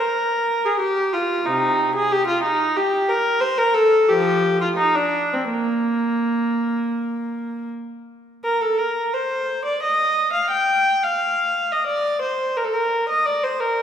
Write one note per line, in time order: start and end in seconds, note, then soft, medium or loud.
0.00 0.64 A#4 medium
0.65 0.81 G#4 medium
0.80 1.12 G4 medium
1.13 1.45 F4 medium
1.45 1.91 C3 soft
1.45 1.94 D#4 medium
1.95 2.11 G#4 medium
2.11 2.27 G4 medium
2.27 2.43 F4 medium
2.43 2.74 D#4 medium
2.76 3.08 G4 medium
3.08 3.41 A#4 medium
3.41 3.57 C5 medium
3.58 3.74 A#4 medium
3.74 4.08 A4 medium
4.08 4.57 F3 medium
4.08 4.60 G4 medium
4.61 4.68 F4 medium
4.76 4.95 D#4 medium
4.95 5.32 D4 medium
5.33 5.52 C4 medium
5.51 7.68 A#3 medium
8.44 8.61 A#4 medium
8.61 8.80 A4 medium
8.78 9.14 A#4 medium
9.14 9.65 C5 medium
9.65 9.82 D5 medium
9.83 10.34 D#5 medium
10.33 10.51 F5 medium
10.51 11.02 G5 medium
11.03 11.71 F5 medium
11.72 11.89 D#5 medium
11.87 12.21 D5 medium
12.21 12.56 C5 medium
12.57 12.64 A#4 medium
12.64 12.72 A4 soft
12.73 13.10 A#4 medium
13.09 13.26 D#5 medium
13.25 13.42 D5 medium
13.43 13.60 C5 medium
13.60 13.82 A#4 medium